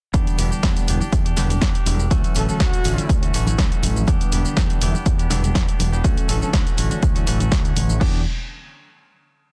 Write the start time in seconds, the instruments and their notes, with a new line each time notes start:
0.14 fingered electric bass E2, analog polysynth D3 E3 G3 B3 D4, clean electric guitar B3 D4 G4, kick, closed hi-hat, tambourine, shaker
0.27 closed hi-hat, tambourine, shaker
0.38 fingered electric bass E1, clean electric guitar B3 D4 G4, open hi-hat, tambourine, shaker
0.51 analog polysynth D3 E3 G3 B3 D4, clean electric guitar D4 G4, muted fingered electric bass stroke, tambourine, shaker
0.63 fingered electric bass E2, clean electric guitar B3 D4 G4, kick, snare, closed hi-hat, tambourine, shaker
0.76 closed hi-hat, tambourine, shaker
0.87 fingered electric bass E1, analog polysynth D3 E3 G3 B3 E4, clean electric guitar B3 D4 G4, open hi-hat, tambourine, shaker
1.00 clean electric guitar D4 G4, tambourine, high conga, shaker
1.12 fingered electric bass E2, kick, closed hi-hat, tambourine, shaker
1.25 clean electric guitar D4 G4, closed hi-hat, shaker
1.36 fingered electric bass E1, analog polysynth D3 E3 G3 B3 D4, clean electric guitar B3 D4 G4, snare, open hi-hat, tambourine, high conga, low conga, shaker
1.50 clean electric guitar D4 G4, closed hi-hat, tambourine, low conga, shaker
1.61 fingered electric bass E2, clean electric guitar B3 D4, kick, snare, closed hi-hat, tambourine, shaker
1.74 clean electric guitar D4 G4, closed hi-hat, shaker
1.86 fingered electric bass E1, analog polysynth D3 E3 G3 B3 D4, open hi-hat, tambourine, high conga, shaker
2.00 tambourine, shaker
2.11 fingered electric bass D2, clean electric guitar E3 A3 C#4 F#4, analog polysynth F#3 A3, kick, closed hi-hat, tambourine, shaker
2.24 closed hi-hat, tambourine, shaker
2.35 fingered electric bass A1, clean electric guitar E3 A3 C#4 F#4, horn section A4, open hi-hat, tambourine, shaker
2.48 analog polysynth D3 E3 F#3 A3 C#4, clean electric guitar A3 C#4 F#4, horn section A4, muted fingered electric bass stroke, tambourine, shaker
2.60 fingered electric bass D2, clean electric guitar C#4 F#4, horn section F#4, kick, snare, closed hi-hat, tambourine, shaker
2.73 closed hi-hat, tambourine, shaker
2.84 fingered electric bass A1, analog polysynth D3 E3 F#3 A3 D4, clean electric guitar E3 A3 C#4 F#4, open hi-hat, tambourine, shaker
2.98 clean electric guitar A3 C#4 F#4, closed hi-hat, tambourine, high conga, shaker
3.09 fingered electric bass D2, analog polysynth E4, kick, closed hi-hat, tambourine, shaker
3.22 clean electric guitar A3 C#4 F#4, closed hi-hat, shaker
3.34 fingered electric bass A1, clean electric guitar E3 A3 C#4 F#4, open hi-hat, tambourine, shaker
3.47 clean electric guitar A3 C#4 F#4, closed hi-hat, tambourine, high conga, shaker
3.58 fingered electric bass D2, clean electric guitar E3 A3, kick, snare, closed hi-hat, tambourine, shaker
3.72 clean electric guitar A3 C#4 F#4, closed hi-hat, shaker
3.83 fingered electric bass A1, analog polysynth D3 E3 F#3 A3 C#4, open hi-hat, tambourine, high conga, low conga, shaker
3.96 tambourine, high conga, shaker
4.07 fingered electric bass E2, analog polysynth D3 E3, clean electric guitar E3 B3 D4 G4, kick, closed hi-hat, tambourine, shaker
4.20 closed hi-hat, tambourine, shaker
4.32 fingered electric bass E1, clean electric guitar E3 B3 D4 G4, open hi-hat, tambourine, shaker
4.44 analog polysynth D3 E3 G3 B3 D4, clean electric guitar B3 D4 G4, muted fingered electric bass stroke, tambourine, shaker
4.56 fingered electric bass E2, clean electric guitar E3 B3 D4, kick, snare, closed hi-hat, tambourine, shaker
4.70 closed hi-hat, tambourine, shaker
4.81 fingered electric bass E1, analog polysynth D3 E3 G3 B3 E4, clean electric guitar E3 B3 D4 G4, open hi-hat, tambourine, shaker
4.94 clean electric guitar B3 D4 G4, tambourine, high conga, shaker
5.06 fingered electric bass E2, kick, closed hi-hat, tambourine, shaker
5.18 clean electric guitar B3 D4 G4, closed hi-hat, shaker
5.30 fingered electric bass E1, analog polysynth D3 E3 G3 B3 D4, clean electric guitar E3 B3 D4 G4, snare, open hi-hat, tambourine, high conga, low conga, shaker
5.43 clean electric guitar B3 D4 G4, closed hi-hat, tambourine, low conga, shaker
5.55 clean electric guitar E3 B3 D4 G4, kick, snare, closed hi-hat, tambourine, shaker
5.68 clean electric guitar B3 D4 G4, closed hi-hat, shaker
5.79 fingered electric bass E1, analog polysynth D3 E3 G3 B3 D4, open hi-hat, tambourine, high conga, shaker
5.92 clean electric guitar B3 D4 G4, tambourine, shaker
6.04 fingered electric bass D2, analog polysynth D3 E3 F#3 A3 C#4, clean electric guitar E3 A3 C#4 F#4, kick, closed hi-hat, tambourine, shaker
6.17 closed hi-hat, tambourine, shaker
6.28 fingered electric bass A1, clean electric guitar E3 A3 C#4 F#4, horn section A4, open hi-hat, tambourine, shaker
6.41 analog polysynth D3 E3 F#3 A3 C#4, clean electric guitar A3 C#4 F#4, horn section A4, tambourine, shaker
6.53 fingered electric bass D2, clean electric guitar E3 C#4 F#4, kick, snare, closed hi-hat, tambourine, shaker
6.67 closed hi-hat, tambourine, shaker
6.77 fingered electric bass A1, analog polysynth D3 E3 F#3 A3 D4, clean electric guitar E3 A3 C#4 F#4, open hi-hat, tambourine, shaker
6.90 clean electric guitar A3 C#4 F#4, closed hi-hat, tambourine, high conga, shaker
7.02 fingered electric bass D2, analog polysynth D3 E3, kick, closed hi-hat, tambourine, shaker
7.15 clean electric guitar A3 C#4 F#4, closed hi-hat, tambourine, shaker
7.26 fingered electric bass A1, clean electric guitar E3 A3 C#4 F#4, open hi-hat, tambourine, shaker
7.40 clean electric guitar A3 C#4 F#4, closed hi-hat, tambourine, high conga, shaker
7.51 fingered electric bass D2, clean electric guitar E3 A3 F#4, kick, snare, closed hi-hat, tambourine, shaker
7.64 clean electric guitar A3 C#4 F#4, closed hi-hat, shaker
7.76 fingered electric bass A1, analog polysynth D3 E3 F#3 A3 C#4, open hi-hat, tambourine, high conga, low conga, shaker
7.89 tambourine, high conga, shaker
8.00 fingered electric bass E2, analog polysynth D3 E3, clean electric guitar B3 D4 G4, kick, crash